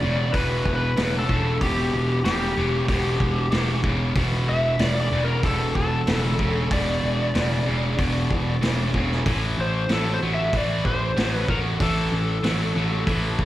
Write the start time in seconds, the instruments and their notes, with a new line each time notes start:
Already playing: electric slide guitar D5
0.02 picked electric bass E1, distorted electric guitar E2 C#3
0.33 picked electric bass E1, distorted electric guitar E2 B2, electric slide guitar B4, kick, open hi-hat
0.66 picked electric bass E1, kick
0.76 electric slide guitar B4
0.97 picked electric bass E1, distorted electric guitar E2 C#3, snare, open hi-hat
1.19 electric slide guitar A4
1.28 picked electric bass E1, distorted electric guitar E2 C#3, kick
1.61 picked electric bass E1, distorted electric guitar E2 B2, electric slide guitar G4, kick, open hi-hat
1.94 picked electric bass E1
2.24 picked electric bass E1, distorted electric guitar E2 C#3, electric slide guitar G4, snare, open hi-hat
2.57 picked electric bass E1, distorted electric guitar E2 C#3
2.88 picked electric bass E1, distorted electric guitar E2 B2, kick, open hi-hat
3.20 picked electric bass E1, kick
3.52 picked electric bass E1, distorted electric guitar E2 C#3, snare, open hi-hat
3.84 picked electric bass E1, distorted electric guitar E2 C#3, kick
4.15 picked electric bass E1, distorted electric guitar E2 B2, kick, open hi-hat
4.47 picked electric bass E1, electric slide guitar E5
4.79 picked electric bass E1, distorted electric guitar E2 C#3, electric slide guitar D5, snare, open hi-hat
5.01 electric slide guitar D5
5.12 picked electric bass E1, distorted electric guitar E2 C#3
5.24 electric slide guitar A#4
5.43 picked electric bass E1, distorted electric guitar E2 B2, electric slide guitar A4, kick, open hi-hat
5.75 picked electric bass E1, electric slide guitar A4, kick
6.07 picked electric bass E1, distorted electric guitar E2 C#3, snare, open hi-hat
6.39 picked electric bass E1, distorted electric guitar E2 C#3, kick
6.70 picked electric bass E1, distorted electric guitar E2 B2, electric slide guitar D5, kick, open hi-hat
7.03 picked electric bass E1
7.34 picked electric bass E1, distorted electric guitar E2 C#3, snare, open hi-hat
7.66 picked electric bass E1, distorted electric guitar E2 C#3
7.97 picked electric bass E1, distorted electric guitar E2 B2, kick, open hi-hat
8.31 picked electric bass E1, kick
8.61 picked electric bass E1, distorted electric guitar E2 C#3, snare, open hi-hat
8.94 picked electric bass E1, distorted electric guitar E2 C#3, kick
9.11 snare
9.26 picked electric bass A1, distorted electric guitar A2 E3, kick, open hi-hat
9.58 picked electric bass A1, electric slide guitar C5
9.89 picked electric bass A1, distorted electric guitar A2 F#3, snare, open hi-hat
9.93 electric slide guitar A4
10.14 electric slide guitar C5
10.22 picked electric bass A1, distorted electric guitar A2 F#3
10.34 electric slide guitar E5
10.53 picked electric bass A1, distorted electric guitar A2 E3, electric slide guitar D5, kick, open hi-hat
10.85 picked electric bass A1, electric slide guitar C5, kick
11.17 picked electric bass A1, distorted electric guitar A2 F#3, snare, open hi-hat
11.33 electric slide guitar B4
11.48 picked electric bass A1, distorted electric guitar A2 F#3, electric slide guitar A#4, kick
11.80 picked electric bass A1, distorted electric guitar A2 E3, electric slide guitar A4, kick, open hi-hat
12.12 picked electric bass A1
12.43 picked electric bass A1, distorted electric guitar A2 F#3, snare, open hi-hat
12.75 picked electric bass A1, distorted electric guitar A2 F#3
13.06 picked electric bass A1, distorted electric guitar A2 E3, kick, open hi-hat
13.39 picked electric bass A1, kick